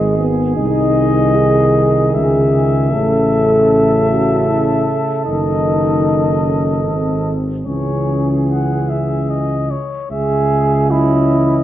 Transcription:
0.00 0.54 G#1 medium
0.00 0.26 D#3 soft
0.00 0.17 G#3 medium
0.00 2.89 G#4 soft
0.00 0.26 D#5 soft
0.18 0.56 B3 medium
0.57 2.11 C2 medium
0.57 2.94 D#3 medium
0.57 1.37 D#4 medium
0.57 2.16 D#5 medium
1.36 2.13 G#4 medium
2.14 2.94 C#2 medium
2.14 2.90 G#4 medium
2.14 5.24 E5 medium
2.92 4.98 A1 medium
2.92 5.26 C#3 medium
2.92 4.07 A4 medium
2.92 7.33 A4 soft
4.10 4.50 F#4 medium
4.49 4.87 E4 medium
5.25 6.86 F#1 medium
5.25 7.33 D#3 medium
5.25 6.40 D#4 medium
5.25 7.32 D#5 soft
6.44 6.83 C#4 soft
6.84 7.65 G#1 soft
6.84 7.67 C4 medium
7.66 9.74 C#2 soft
7.66 9.74 E3 soft
7.66 9.70 C#4 soft
7.66 9.74 G#4 soft
7.66 8.36 C#5 soft
8.49 8.91 F#5 soft
8.89 9.32 E5 soft
9.30 9.72 D#5 soft
9.71 10.11 C#5 soft
10.11 11.63 C#2 medium
10.11 10.92 G#3 soft
10.11 10.92 G#4 medium
10.11 10.87 E5 soft
10.90 11.31 F#3 soft
10.90 11.63 C#4 soft
10.90 11.63 E4 medium
10.90 11.63 D#5 soft
11.29 11.63 E3 soft

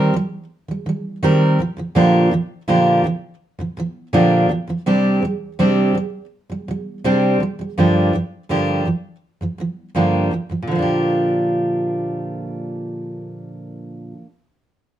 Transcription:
0.00 0.12 D#3 medium
0.00 0.14 G3 medium
0.00 0.14 C4 medium
0.00 0.14 G4 medium
0.00 0.14 A#4 medium
0.14 0.43 D#3 medium
0.14 0.44 G3 medium
0.68 0.85 D#3 soft
0.68 0.88 G3 medium
0.86 1.15 D#3 medium
0.86 1.17 G3 medium
1.23 1.59 D#3 medium
1.23 1.59 G3 medium
1.23 1.59 C4 medium
1.23 1.60 G4 medium
1.23 1.60 A#4 medium
1.59 1.75 A#2 soft
1.59 1.77 D3 medium
1.59 1.78 F3 medium
1.77 1.94 A#2 soft
1.77 1.94 D3 soft
1.77 1.95 F3 medium
1.95 2.30 A#2 medium
1.95 2.32 D3 medium
1.95 2.32 F3 medium
1.95 2.32 A#3 medium
1.95 2.32 D4 medium
1.95 2.32 G4 medium
2.31 2.60 A#2 medium
2.31 2.61 D3 medium
2.31 2.62 F3 medium
2.68 3.03 A#2 medium
2.68 3.04 D3 medium
2.68 3.04 F3 medium
2.68 3.05 A#3 medium
2.68 3.05 D4 medium
2.68 3.05 G4 medium
3.04 3.33 A#2 medium
3.04 3.34 D3 medium
3.04 3.35 F3 medium
3.59 3.76 A#2 soft
3.59 3.77 D3 soft
3.59 3.78 F3 medium
3.77 4.06 A#2 medium
3.77 4.07 D3 medium
3.77 4.07 F3 medium
4.13 4.48 A#2 medium
4.13 4.49 D3 medium
4.13 4.50 F3 medium
4.13 4.50 A#3 medium
4.13 4.50 D4 medium
4.13 4.50 G4 medium
4.49 4.66 A#2 medium
4.49 4.68 D3 medium
4.49 4.69 F3 medium
4.67 4.86 A#2 soft
4.67 4.86 D3 medium
4.67 4.86 F3 medium
4.86 5.21 C3 medium
4.86 5.23 G3 medium
4.86 5.23 C4 medium
4.86 5.23 D4 medium
4.86 5.23 G4 medium
5.22 5.52 C3 medium
5.22 5.53 G3 medium
5.59 5.94 C3 medium
5.59 5.95 G3 medium
5.59 5.96 C4 medium
5.59 5.96 D4 medium
5.59 5.96 G4 medium
5.95 6.24 C3 medium
6.50 6.67 C3 soft
6.50 6.69 G3 medium
6.68 6.97 C3 medium
6.68 6.98 G3 medium
7.04 7.39 C3 medium
7.04 7.41 G3 medium
7.04 7.41 C4 medium
7.04 7.41 D4 medium
7.04 7.42 G4 medium
7.40 7.58 C3 soft
7.40 7.60 G3 medium
7.59 7.77 C3 soft
7.59 7.78 G3 soft
7.78 8.12 G2 medium
7.78 8.13 D3 medium
7.78 8.14 F3 medium
7.78 8.14 A#3 medium
7.78 8.14 D4 medium
7.78 8.15 G4 medium
8.13 8.42 G2 medium
8.13 8.43 D3 medium
8.13 8.44 F3 medium
8.49 8.84 G2 medium
8.49 8.86 D3 medium
8.49 8.86 F3 medium
8.49 8.87 A#3 medium
8.49 8.87 D4 medium
8.49 8.87 G4 medium
8.85 9.15 G2 soft
8.85 9.16 D3 medium
8.85 9.16 F3 medium
9.41 9.57 G2 soft
9.41 9.59 D3 soft
9.41 9.60 F3 soft
9.58 9.88 G2 medium
9.58 9.89 D3 medium
9.58 9.89 F3 medium
9.95 10.30 G2 medium
9.95 10.32 D3 medium
9.95 10.32 F3 medium
9.95 10.32 A#3 medium
9.95 10.32 D4 medium
9.95 10.32 G4 medium
10.31 10.48 G2 soft
10.31 10.50 D3 medium
10.31 10.51 F3 medium
10.50 10.62 G2 soft
10.50 10.66 D3 soft
10.50 10.69 F3 soft
10.62 14.12 A#2 medium
10.67 14.17 D3 medium
10.67 14.21 F3 medium
10.75 14.25 A#3 medium
10.75 14.29 D4 medium
10.82 14.32 G4 medium

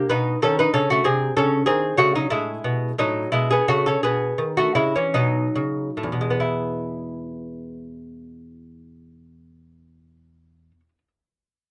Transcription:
0.09 0.35 B2 medium
0.09 0.39 D#4 medium
0.09 0.40 B4 loud
0.42 0.67 D#3 medium
0.42 0.57 C#4 medium
0.42 0.57 A4 medium
0.59 0.73 D#4 medium
0.59 0.73 B4 medium
0.74 0.98 C#3 medium
0.74 0.88 C#4 medium
0.74 0.89 A4 loud
0.90 1.05 A3 medium
0.90 1.05 F#4 medium
1.04 1.29 C3 medium
1.04 1.34 C4 medium
1.04 1.34 G#4 medium
1.37 1.61 C#3 medium
1.37 1.66 C#4 medium
1.37 1.66 A4 medium
1.66 1.92 D#3 medium
1.66 1.97 C4 medium
1.66 1.97 G#4 medium
1.97 2.24 C#3 medium
1.97 2.14 A3 medium
1.97 2.15 F#4 loud
2.15 2.31 F#3 medium
2.15 2.30 D#4 medium
2.30 2.57 A2 medium
2.30 2.94 G#3 medium
2.30 2.95 E4 medium
2.64 2.91 B2 medium
2.98 3.25 A2 medium
2.98 3.30 F#3 medium
2.98 3.30 D#4 medium
3.32 3.59 B2 medium
3.32 3.48 G#3 medium
3.32 3.49 E4 medium
3.50 3.66 B3 medium
3.50 3.67 G#4 medium
3.68 3.95 C#3 medium
3.68 3.84 A3 medium
3.68 3.84 F#4 medium
3.86 4.02 C#4 medium
3.86 4.02 A4 medium
4.03 4.32 B2 medium
4.03 4.54 B3 medium
4.03 4.55 G#4 medium
4.38 4.68 D#3 medium
4.57 4.75 A3 medium
4.57 4.75 F#4 medium
4.75 4.96 C#3 medium
4.75 4.93 G#3 medium
4.75 4.94 E4 medium
4.96 5.14 E3 soft
4.96 5.14 C#4 medium
5.14 5.47 B2 medium
5.14 6.20 F#3 medium
5.14 6.36 D#4 medium
5.56 5.89 C#3 medium
5.97 6.12 A2 soft
6.03 10.71 E2 medium
6.12 10.80 B2 medium
6.21 10.88 G#3 soft
6.30 10.98 B3 soft
6.40 11.08 E4 medium

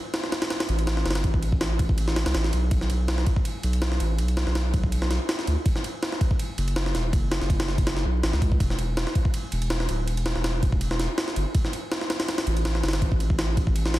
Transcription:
0.14 snare loud
0.14 ride medium
0.24 snare medium
0.32 snare loud
0.32 ride medium
0.42 snare loud
0.42 ride medium
0.50 snare loud
0.50 ride medium
0.60 snare loud
0.60 ride medium
0.69 1.04 A1 loud
0.69 ride medium
0.79 ride soft
0.87 snare loud
0.87 ride medium
0.97 snare medium
1.06 1.26 G1 loud
1.06 snare medium
1.06 ride medium
1.10 snare medium
1.10 ride medium
1.15 snare loud
1.15 ride medium
1.24 1.51 A1 loud
1.24 kick medium
1.24 ride medium
1.34 kick medium
1.42 ride medium
1.52 2.24 A1 loud
1.52 kick loud
1.61 snare loud
1.61 ride medium
1.79 kick loud
1.79 ride medium
1.89 kick medium
1.98 ride medium
2.08 snare medium
2.16 snare loud
2.16 ride medium
2.26 2.34 C2 medium
2.26 snare loud
2.26 ride medium
2.35 2.51 A1 loud
2.35 snare loud
2.35 ride medium
2.44 snare medium
2.53 3.25 B1 loud
2.53 ride medium
2.71 kick loud
2.71 ride medium
2.81 snare soft
2.90 ride medium
3.08 snare loud
3.08 ride medium
3.18 snare medium
3.26 kick loud
3.26 ride medium
3.36 kick loud
3.45 ride medium
3.63 3.99 B1 loud
3.63 ride medium
3.73 ride soft
3.82 snare loud
3.82 ride medium
3.92 snare medium
4.00 4.20 A1 loud
4.00 ride medium
4.19 4.45 B1 loud
4.19 ride medium
4.28 ride soft
4.37 snare loud
4.37 ride medium
4.47 5.19 B1 loud
4.47 snare soft
4.55 snare loud
4.55 ride medium
4.74 kick loud
4.74 ride medium
4.83 kick medium
4.92 ride medium
5.02 snare medium
5.11 snare medium
5.11 ride medium
5.29 snare loud
5.29 ride medium
5.39 snare medium
5.47 5.56 D2 loud
5.47 ride medium
5.66 kick loud
5.66 ride medium
5.76 snare soft
5.84 ride medium
6.03 snare loud
6.03 ride medium
6.12 snare medium
6.21 kick loud
6.21 ride medium
6.31 kick loud
6.39 ride medium
6.58 6.93 F#1 loud
6.58 ride medium
6.68 ride soft
6.76 snare loud
6.76 ride medium
6.86 snare medium
6.95 7.15 E1 loud
6.95 snare medium
6.95 ride medium
7.13 7.40 F#1 loud
7.13 kick loud
7.13 ride medium
7.31 snare loud
7.31 ride medium
7.41 8.05 F#1 loud
7.41 snare soft
7.50 kick medium
7.50 ride medium
7.60 snare loud
7.60 ride medium
7.68 snare soft
7.78 kick medium
7.78 ride medium
7.87 snare loud
7.87 ride medium
7.97 snare soft
8.05 8.22 B1 medium
8.23 8.32 A1 medium
8.23 snare loud
8.23 ride medium
8.33 8.59 C#2 loud
8.33 snare soft
8.42 kick medium
8.42 ride medium
8.52 kick medium
8.60 9.05 E1 loud
8.60 kick loud
8.60 ride medium
8.70 snare soft
8.79 ride medium
8.97 snare loud
8.97 ride medium
9.07 snare medium
9.15 kick loud
9.15 ride medium
9.25 kick loud
9.34 ride medium
9.52 9.88 E1 loud
9.52 ride medium
9.62 ride soft
9.70 snare loud
9.70 ride medium
9.80 snare medium
9.89 10.09 D1 loud
9.89 ride medium
10.07 10.34 E1 loud
10.07 ride medium
10.17 ride soft
10.26 snare loud
10.26 ride medium
10.35 11.08 E1 medium
10.35 snare soft
10.44 snare loud
10.44 ride medium
10.63 kick loud
10.63 ride medium
10.72 kick loud
10.81 ride medium
10.91 snare medium
10.99 snare medium
10.99 ride medium
11.18 snare loud
11.18 ride medium
11.28 snare medium
11.36 11.45 G1 medium
11.36 ride medium
11.55 kick loud
11.55 ride medium
11.65 snare soft
11.73 ride medium
11.92 snare loud
11.92 ride medium
12.01 snare medium
12.10 snare loud
12.10 ride medium
12.20 snare loud
12.20 ride medium
12.28 snare loud
12.28 ride medium
12.38 snare loud
12.38 ride medium
12.47 12.82 A1 loud
12.47 ride medium
12.57 ride soft
12.65 snare loud
12.65 ride medium
12.75 snare medium
12.83 13.03 G1 loud
12.83 snare medium
12.83 ride medium
12.88 snare loud
12.88 ride medium
12.93 snare loud
12.93 ride medium
13.02 13.29 A1 loud
13.02 kick medium
13.02 ride medium
13.12 kick medium
13.20 ride medium
13.30 13.99 A1 loud
13.30 kick loud
13.39 snare loud
13.39 ride medium
13.57 kick loud
13.57 ride medium
13.67 kick medium
13.76 ride medium
13.86 snare medium
13.94 snare loud
13.94 ride medium

